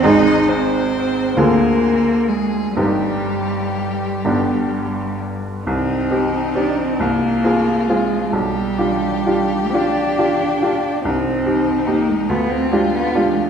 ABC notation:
X:1
M:6/8
L:1/16
Q:3/8=45
K:Cm
V:1 name="Violin"
e2 c4 B4 A2 | G8- G2 z2 | E6 F6 | G12 |
E6 F6 |]
V:2 name="Grand piano"
[A,,,A,,CEA]6 [D,,D,CFA]6 | [G,,,G,,CEG]6 [G,,,G,,=B,DG]6 | C,,2 [CEG]2 [CEG]2 C,,2 [CFA]2 [CFA]2 | =B,,,2 [DFG]2 [DFG]2 [DFG]2 [DFG]2 [DFG]2 |
C,,2 [EG]2 [EG]2 D,,2 [DFG]2 [DFG]2 |]
V:3 name="Cello"
E2 C4 B,4 A,2 | G,8- G,2 z2 | C4 D C B,4 A,2 | G,6 D6 |
C4 B, A, =B, C A, B, A,2 |]